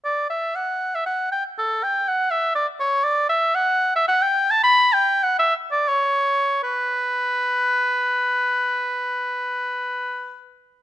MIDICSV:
0, 0, Header, 1, 2, 480
1, 0, Start_track
1, 0, Key_signature, 2, "minor"
1, 0, Tempo, 512383
1, 46, Time_signature, 3, 2, 24, 8
1, 1486, Tempo, 493421
1, 3406, Tempo, 539568
1, 4366, Tempo, 592885
1, 4846, Tempo, 652174
1, 5326, Tempo, 715137
1, 8643, End_track
2, 0, Start_track
2, 0, Title_t, "Oboe"
2, 0, Program_c, 0, 68
2, 43, Note_on_c, 0, 74, 61
2, 268, Note_off_c, 0, 74, 0
2, 278, Note_on_c, 0, 76, 54
2, 517, Note_on_c, 0, 78, 60
2, 531, Note_off_c, 0, 76, 0
2, 888, Note_on_c, 0, 76, 60
2, 902, Note_off_c, 0, 78, 0
2, 987, Note_off_c, 0, 76, 0
2, 993, Note_on_c, 0, 78, 61
2, 1229, Note_off_c, 0, 78, 0
2, 1235, Note_on_c, 0, 79, 67
2, 1346, Note_off_c, 0, 79, 0
2, 1482, Note_on_c, 0, 69, 70
2, 1725, Note_on_c, 0, 79, 72
2, 1739, Note_off_c, 0, 69, 0
2, 1965, Note_on_c, 0, 78, 73
2, 1979, Note_off_c, 0, 79, 0
2, 2187, Note_on_c, 0, 76, 75
2, 2201, Note_off_c, 0, 78, 0
2, 2419, Note_off_c, 0, 76, 0
2, 2425, Note_on_c, 0, 74, 72
2, 2534, Note_off_c, 0, 74, 0
2, 2665, Note_on_c, 0, 73, 76
2, 2899, Note_on_c, 0, 74, 83
2, 2913, Note_off_c, 0, 73, 0
2, 3139, Note_off_c, 0, 74, 0
2, 3145, Note_on_c, 0, 76, 85
2, 3396, Note_on_c, 0, 78, 92
2, 3410, Note_off_c, 0, 76, 0
2, 3750, Note_off_c, 0, 78, 0
2, 3757, Note_on_c, 0, 76, 84
2, 3862, Note_off_c, 0, 76, 0
2, 3868, Note_on_c, 0, 78, 97
2, 3991, Note_on_c, 0, 79, 89
2, 4004, Note_off_c, 0, 78, 0
2, 4247, Note_on_c, 0, 81, 96
2, 4260, Note_off_c, 0, 79, 0
2, 4355, Note_off_c, 0, 81, 0
2, 4361, Note_on_c, 0, 83, 113
2, 4602, Note_on_c, 0, 79, 97
2, 4614, Note_off_c, 0, 83, 0
2, 4842, Note_on_c, 0, 78, 85
2, 4853, Note_off_c, 0, 79, 0
2, 4959, Note_off_c, 0, 78, 0
2, 4963, Note_on_c, 0, 76, 89
2, 5070, Note_off_c, 0, 76, 0
2, 5202, Note_on_c, 0, 74, 82
2, 5323, Note_on_c, 0, 73, 82
2, 5334, Note_off_c, 0, 74, 0
2, 5820, Note_off_c, 0, 73, 0
2, 5828, Note_on_c, 0, 71, 78
2, 8353, Note_off_c, 0, 71, 0
2, 8643, End_track
0, 0, End_of_file